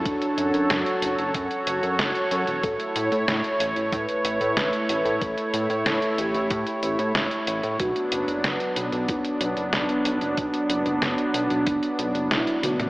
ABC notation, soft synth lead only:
X:1
M:4/4
L:1/8
Q:1/4=93
K:Amix
V:1 name="Soft synth lead"
D3 C4 z | A2 c2 B4 | A3 G4 z | F2 B2 D4- |
D6 E F |]